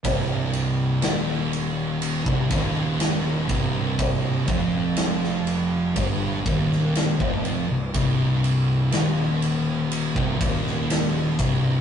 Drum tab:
RD |x-x-x-x-x-x-x-x-|x-x-x-x-x-x-x-x-|x-x-x-x-x-x-x-x-|
SD |----o-------o---|----oo-----oo---|----o------oo---|
BD |o--------oo---o-|o-o-----o-o--o--|o--------oo---o-|